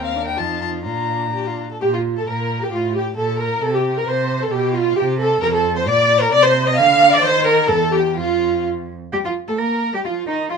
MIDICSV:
0, 0, Header, 1, 5, 480
1, 0, Start_track
1, 0, Key_signature, -2, "major"
1, 0, Tempo, 473560
1, 875, Time_signature, 2, 2, 24, 8
1, 1840, Tempo, 452148
1, 7600, Tempo, 467290
1, 11025, End_track
2, 0, Start_track
2, 0, Title_t, "Violin"
2, 0, Program_c, 0, 40
2, 46, Note_on_c, 0, 77, 60
2, 264, Note_off_c, 0, 77, 0
2, 270, Note_on_c, 0, 79, 55
2, 384, Note_on_c, 0, 81, 59
2, 399, Note_off_c, 0, 79, 0
2, 616, Note_off_c, 0, 81, 0
2, 622, Note_on_c, 0, 81, 57
2, 703, Note_off_c, 0, 81, 0
2, 863, Note_on_c, 0, 82, 55
2, 1581, Note_off_c, 0, 82, 0
2, 1839, Note_on_c, 0, 67, 55
2, 1888, Note_off_c, 0, 67, 0
2, 1966, Note_on_c, 0, 65, 41
2, 2051, Note_off_c, 0, 65, 0
2, 2208, Note_on_c, 0, 69, 49
2, 2326, Note_off_c, 0, 69, 0
2, 2346, Note_on_c, 0, 70, 50
2, 2707, Note_on_c, 0, 67, 50
2, 2723, Note_off_c, 0, 70, 0
2, 2838, Note_on_c, 0, 65, 47
2, 2854, Note_off_c, 0, 67, 0
2, 3060, Note_off_c, 0, 65, 0
2, 3077, Note_on_c, 0, 67, 54
2, 3162, Note_off_c, 0, 67, 0
2, 3313, Note_on_c, 0, 69, 59
2, 3532, Note_off_c, 0, 69, 0
2, 3558, Note_on_c, 0, 70, 56
2, 3798, Note_on_c, 0, 69, 62
2, 3814, Note_off_c, 0, 70, 0
2, 3899, Note_off_c, 0, 69, 0
2, 3907, Note_on_c, 0, 67, 47
2, 4142, Note_on_c, 0, 70, 54
2, 4157, Note_off_c, 0, 67, 0
2, 4278, Note_on_c, 0, 72, 52
2, 4294, Note_off_c, 0, 70, 0
2, 4625, Note_on_c, 0, 69, 59
2, 4641, Note_off_c, 0, 72, 0
2, 4730, Note_off_c, 0, 69, 0
2, 4753, Note_on_c, 0, 67, 57
2, 4978, Note_on_c, 0, 65, 65
2, 4994, Note_off_c, 0, 67, 0
2, 5202, Note_off_c, 0, 65, 0
2, 5208, Note_on_c, 0, 67, 67
2, 5293, Note_off_c, 0, 67, 0
2, 5454, Note_on_c, 0, 69, 67
2, 5539, Note_off_c, 0, 69, 0
2, 5678, Note_on_c, 0, 70, 82
2, 5724, Note_off_c, 0, 70, 0
2, 5816, Note_on_c, 0, 69, 60
2, 6038, Note_off_c, 0, 69, 0
2, 6056, Note_on_c, 0, 72, 73
2, 6160, Note_off_c, 0, 72, 0
2, 6167, Note_on_c, 0, 74, 85
2, 6513, Note_off_c, 0, 74, 0
2, 6522, Note_on_c, 0, 70, 80
2, 6634, Note_off_c, 0, 70, 0
2, 6660, Note_on_c, 0, 74, 101
2, 6763, Note_off_c, 0, 74, 0
2, 6785, Note_on_c, 0, 72, 75
2, 7006, Note_off_c, 0, 72, 0
2, 7035, Note_on_c, 0, 75, 77
2, 7134, Note_off_c, 0, 75, 0
2, 7152, Note_on_c, 0, 77, 94
2, 7503, Note_on_c, 0, 74, 87
2, 7519, Note_off_c, 0, 77, 0
2, 7621, Note_on_c, 0, 72, 95
2, 7636, Note_off_c, 0, 74, 0
2, 7847, Note_off_c, 0, 72, 0
2, 7861, Note_on_c, 0, 70, 82
2, 8084, Note_off_c, 0, 70, 0
2, 8103, Note_on_c, 0, 69, 77
2, 8349, Note_on_c, 0, 67, 69
2, 8364, Note_off_c, 0, 69, 0
2, 8581, Note_off_c, 0, 67, 0
2, 8586, Note_on_c, 0, 65, 59
2, 9057, Note_off_c, 0, 65, 0
2, 9544, Note_on_c, 0, 67, 52
2, 9656, Note_off_c, 0, 67, 0
2, 9666, Note_on_c, 0, 65, 39
2, 9749, Note_off_c, 0, 65, 0
2, 9905, Note_on_c, 0, 69, 45
2, 9952, Note_off_c, 0, 69, 0
2, 10014, Note_on_c, 0, 70, 42
2, 10364, Note_off_c, 0, 70, 0
2, 10370, Note_on_c, 0, 67, 49
2, 10418, Note_off_c, 0, 67, 0
2, 10482, Note_on_c, 0, 65, 44
2, 10564, Note_off_c, 0, 65, 0
2, 10713, Note_on_c, 0, 63, 47
2, 10795, Note_off_c, 0, 63, 0
2, 10951, Note_on_c, 0, 65, 53
2, 11025, Note_off_c, 0, 65, 0
2, 11025, End_track
3, 0, Start_track
3, 0, Title_t, "Violin"
3, 0, Program_c, 1, 40
3, 0, Note_on_c, 1, 70, 49
3, 377, Note_on_c, 1, 65, 43
3, 392, Note_off_c, 1, 70, 0
3, 850, Note_off_c, 1, 65, 0
3, 856, Note_on_c, 1, 65, 41
3, 1294, Note_off_c, 1, 65, 0
3, 1353, Note_on_c, 1, 67, 49
3, 1489, Note_on_c, 1, 65, 40
3, 1504, Note_off_c, 1, 67, 0
3, 1726, Note_off_c, 1, 65, 0
3, 1735, Note_on_c, 1, 69, 41
3, 1823, Note_off_c, 1, 69, 0
3, 1829, Note_on_c, 1, 67, 60
3, 1880, Note_off_c, 1, 67, 0
3, 1969, Note_on_c, 1, 65, 40
3, 2054, Note_off_c, 1, 65, 0
3, 2215, Note_on_c, 1, 69, 53
3, 2327, Note_on_c, 1, 70, 48
3, 2343, Note_off_c, 1, 69, 0
3, 2677, Note_off_c, 1, 70, 0
3, 2683, Note_on_c, 1, 67, 48
3, 2797, Note_off_c, 1, 67, 0
3, 2804, Note_on_c, 1, 65, 50
3, 3018, Note_off_c, 1, 65, 0
3, 3024, Note_on_c, 1, 67, 48
3, 3263, Note_off_c, 1, 67, 0
3, 3270, Note_on_c, 1, 69, 59
3, 3502, Note_off_c, 1, 69, 0
3, 3509, Note_on_c, 1, 70, 57
3, 3748, Note_on_c, 1, 69, 68
3, 3764, Note_off_c, 1, 70, 0
3, 3863, Note_off_c, 1, 69, 0
3, 3869, Note_on_c, 1, 67, 48
3, 4110, Note_off_c, 1, 67, 0
3, 4123, Note_on_c, 1, 70, 56
3, 4231, Note_off_c, 1, 70, 0
3, 4237, Note_on_c, 1, 72, 54
3, 4581, Note_on_c, 1, 69, 57
3, 4597, Note_off_c, 1, 72, 0
3, 4704, Note_on_c, 1, 67, 61
3, 4720, Note_off_c, 1, 69, 0
3, 4943, Note_on_c, 1, 65, 61
3, 4959, Note_off_c, 1, 67, 0
3, 5176, Note_on_c, 1, 67, 70
3, 5192, Note_off_c, 1, 65, 0
3, 5412, Note_off_c, 1, 67, 0
3, 5419, Note_on_c, 1, 69, 68
3, 5654, Note_on_c, 1, 70, 88
3, 5670, Note_off_c, 1, 69, 0
3, 5781, Note_off_c, 1, 70, 0
3, 5789, Note_on_c, 1, 69, 59
3, 6024, Note_off_c, 1, 69, 0
3, 6048, Note_on_c, 1, 72, 80
3, 6151, Note_on_c, 1, 74, 89
3, 6167, Note_off_c, 1, 72, 0
3, 6500, Note_on_c, 1, 70, 75
3, 6516, Note_off_c, 1, 74, 0
3, 6623, Note_on_c, 1, 74, 105
3, 6639, Note_off_c, 1, 70, 0
3, 6734, Note_on_c, 1, 72, 82
3, 6750, Note_off_c, 1, 74, 0
3, 6972, Note_off_c, 1, 72, 0
3, 6978, Note_on_c, 1, 75, 85
3, 7101, Note_on_c, 1, 77, 92
3, 7117, Note_off_c, 1, 75, 0
3, 7452, Note_on_c, 1, 74, 81
3, 7468, Note_off_c, 1, 77, 0
3, 7561, Note_off_c, 1, 74, 0
3, 7568, Note_on_c, 1, 72, 97
3, 7810, Note_on_c, 1, 70, 82
3, 7825, Note_off_c, 1, 72, 0
3, 8041, Note_on_c, 1, 69, 81
3, 8056, Note_off_c, 1, 70, 0
3, 8299, Note_on_c, 1, 67, 67
3, 8314, Note_off_c, 1, 69, 0
3, 8545, Note_off_c, 1, 67, 0
3, 8551, Note_on_c, 1, 65, 62
3, 9039, Note_off_c, 1, 65, 0
3, 9541, Note_on_c, 1, 67, 60
3, 9589, Note_off_c, 1, 67, 0
3, 9666, Note_on_c, 1, 65, 41
3, 9748, Note_off_c, 1, 65, 0
3, 9900, Note_on_c, 1, 69, 51
3, 9948, Note_off_c, 1, 69, 0
3, 10016, Note_on_c, 1, 70, 46
3, 10376, Note_on_c, 1, 67, 48
3, 10391, Note_off_c, 1, 70, 0
3, 10491, Note_on_c, 1, 65, 51
3, 10506, Note_off_c, 1, 67, 0
3, 10720, Note_off_c, 1, 65, 0
3, 10726, Note_on_c, 1, 63, 46
3, 10956, Note_off_c, 1, 63, 0
3, 10966, Note_on_c, 1, 65, 53
3, 11025, Note_off_c, 1, 65, 0
3, 11025, End_track
4, 0, Start_track
4, 0, Title_t, "Viola"
4, 0, Program_c, 2, 41
4, 0, Note_on_c, 2, 60, 47
4, 164, Note_on_c, 2, 62, 44
4, 179, Note_off_c, 2, 60, 0
4, 402, Note_on_c, 2, 63, 42
4, 417, Note_off_c, 2, 62, 0
4, 867, Note_off_c, 2, 63, 0
4, 873, Note_on_c, 2, 62, 42
4, 1616, Note_off_c, 2, 62, 0
4, 1849, Note_on_c, 2, 67, 76
4, 1978, Note_on_c, 2, 65, 58
4, 1994, Note_off_c, 2, 67, 0
4, 2213, Note_off_c, 2, 65, 0
4, 2222, Note_on_c, 2, 69, 58
4, 2268, Note_off_c, 2, 69, 0
4, 2332, Note_on_c, 2, 70, 51
4, 2706, Note_on_c, 2, 67, 56
4, 2721, Note_off_c, 2, 70, 0
4, 2806, Note_on_c, 2, 65, 62
4, 2822, Note_off_c, 2, 67, 0
4, 3040, Note_off_c, 2, 65, 0
4, 3046, Note_on_c, 2, 67, 58
4, 3131, Note_off_c, 2, 67, 0
4, 3284, Note_on_c, 2, 69, 67
4, 3519, Note_on_c, 2, 70, 70
4, 3535, Note_off_c, 2, 69, 0
4, 3761, Note_on_c, 2, 69, 82
4, 3777, Note_off_c, 2, 70, 0
4, 3892, Note_on_c, 2, 67, 65
4, 3908, Note_off_c, 2, 69, 0
4, 4137, Note_on_c, 2, 70, 61
4, 4153, Note_off_c, 2, 67, 0
4, 4245, Note_on_c, 2, 72, 62
4, 4261, Note_off_c, 2, 70, 0
4, 4622, Note_on_c, 2, 69, 64
4, 4638, Note_off_c, 2, 72, 0
4, 4711, Note_on_c, 2, 67, 68
4, 4726, Note_off_c, 2, 69, 0
4, 4933, Note_off_c, 2, 67, 0
4, 4939, Note_on_c, 2, 65, 75
4, 5172, Note_off_c, 2, 65, 0
4, 5178, Note_on_c, 2, 67, 80
4, 5263, Note_off_c, 2, 67, 0
4, 5431, Note_on_c, 2, 69, 81
4, 5664, Note_off_c, 2, 69, 0
4, 5670, Note_on_c, 2, 70, 105
4, 5717, Note_off_c, 2, 70, 0
4, 5796, Note_on_c, 2, 69, 71
4, 6022, Note_off_c, 2, 69, 0
4, 6028, Note_on_c, 2, 72, 81
4, 6076, Note_off_c, 2, 72, 0
4, 6143, Note_on_c, 2, 74, 94
4, 6515, Note_on_c, 2, 70, 87
4, 6531, Note_off_c, 2, 74, 0
4, 6617, Note_off_c, 2, 70, 0
4, 6624, Note_on_c, 2, 74, 117
4, 6740, Note_on_c, 2, 72, 88
4, 6756, Note_off_c, 2, 74, 0
4, 6994, Note_on_c, 2, 75, 90
4, 7010, Note_off_c, 2, 72, 0
4, 7089, Note_off_c, 2, 75, 0
4, 7096, Note_on_c, 2, 77, 108
4, 7484, Note_on_c, 2, 74, 91
4, 7500, Note_off_c, 2, 77, 0
4, 7580, Note_on_c, 2, 72, 114
4, 7596, Note_off_c, 2, 74, 0
4, 7811, Note_off_c, 2, 72, 0
4, 7818, Note_on_c, 2, 70, 90
4, 8055, Note_on_c, 2, 69, 86
4, 8070, Note_off_c, 2, 70, 0
4, 8288, Note_off_c, 2, 69, 0
4, 8294, Note_on_c, 2, 67, 79
4, 8376, Note_off_c, 2, 67, 0
4, 8556, Note_on_c, 2, 65, 73
4, 9041, Note_off_c, 2, 65, 0
4, 9541, Note_on_c, 2, 55, 61
4, 9589, Note_off_c, 2, 55, 0
4, 9661, Note_on_c, 2, 53, 40
4, 9743, Note_off_c, 2, 53, 0
4, 9903, Note_on_c, 2, 57, 48
4, 10012, Note_on_c, 2, 58, 43
4, 10028, Note_off_c, 2, 57, 0
4, 10361, Note_off_c, 2, 58, 0
4, 10367, Note_on_c, 2, 55, 46
4, 10416, Note_off_c, 2, 55, 0
4, 10489, Note_on_c, 2, 53, 52
4, 10714, Note_off_c, 2, 53, 0
4, 10720, Note_on_c, 2, 51, 50
4, 10949, Note_off_c, 2, 51, 0
4, 10955, Note_on_c, 2, 53, 51
4, 11025, Note_off_c, 2, 53, 0
4, 11025, End_track
5, 0, Start_track
5, 0, Title_t, "Cello"
5, 0, Program_c, 3, 42
5, 0, Note_on_c, 3, 39, 52
5, 385, Note_on_c, 3, 41, 46
5, 400, Note_off_c, 3, 39, 0
5, 876, Note_on_c, 3, 46, 43
5, 891, Note_off_c, 3, 41, 0
5, 1633, Note_off_c, 3, 46, 0
5, 1850, Note_on_c, 3, 46, 55
5, 2275, Note_off_c, 3, 46, 0
5, 2334, Note_on_c, 3, 46, 48
5, 2754, Note_off_c, 3, 46, 0
5, 2814, Note_on_c, 3, 45, 53
5, 3231, Note_off_c, 3, 45, 0
5, 3284, Note_on_c, 3, 46, 51
5, 3705, Note_off_c, 3, 46, 0
5, 3753, Note_on_c, 3, 48, 58
5, 4180, Note_off_c, 3, 48, 0
5, 4234, Note_on_c, 3, 48, 57
5, 4657, Note_off_c, 3, 48, 0
5, 4705, Note_on_c, 3, 47, 62
5, 5127, Note_off_c, 3, 47, 0
5, 5194, Note_on_c, 3, 48, 66
5, 5614, Note_off_c, 3, 48, 0
5, 5670, Note_on_c, 3, 41, 71
5, 6149, Note_on_c, 3, 46, 68
5, 6165, Note_off_c, 3, 41, 0
5, 6626, Note_off_c, 3, 46, 0
5, 6632, Note_on_c, 3, 48, 76
5, 7117, Note_on_c, 3, 50, 75
5, 7133, Note_off_c, 3, 48, 0
5, 7589, Note_off_c, 3, 50, 0
5, 7595, Note_on_c, 3, 51, 80
5, 8071, Note_on_c, 3, 40, 70
5, 8086, Note_off_c, 3, 51, 0
5, 8553, Note_on_c, 3, 41, 59
5, 8568, Note_off_c, 3, 40, 0
5, 9326, Note_off_c, 3, 41, 0
5, 9534, Note_on_c, 3, 67, 64
5, 9584, Note_off_c, 3, 67, 0
5, 9659, Note_on_c, 3, 65, 41
5, 9742, Note_off_c, 3, 65, 0
5, 9900, Note_on_c, 3, 69, 53
5, 10007, Note_on_c, 3, 70, 50
5, 10022, Note_off_c, 3, 69, 0
5, 10370, Note_off_c, 3, 70, 0
5, 10375, Note_on_c, 3, 67, 50
5, 10423, Note_off_c, 3, 67, 0
5, 10485, Note_on_c, 3, 65, 50
5, 10567, Note_off_c, 3, 65, 0
5, 10711, Note_on_c, 3, 63, 55
5, 10945, Note_off_c, 3, 63, 0
5, 10951, Note_on_c, 3, 65, 58
5, 11025, Note_off_c, 3, 65, 0
5, 11025, End_track
0, 0, End_of_file